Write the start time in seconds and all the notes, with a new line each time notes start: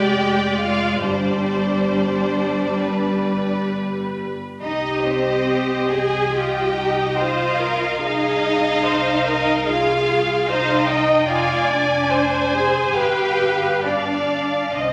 Already playing: F1 G#3 G4 D5 G5
0.58 F4 F5
1.02 G1 G3 D4 C5 D5
2.85 B4
4.62 C2 D#4 G4 D#5
5.04 C4 C5
5.91 G#4 G#5
6.34 F4 G4 D#5 G5
6.75 D#4
7.18 F4 C5 F5
7.60 A#4
8.02 C2 D#4 G#4 D#5 F5
8.85 C5
9.26 D#4 A#4 D#5
9.67 F4 G#4 F5
10.48 D#4 C5 D#5 F5
10.88 D#5 G5
11.27 F1 F4 D5 F5 G#5
11.68 D4 D5
12.09 C5
12.52 G#4 G#5
12.94 G1 G4 B4 F5 G5
13.82 D4 D5 F5
14.75 C2 C4 C5 D#5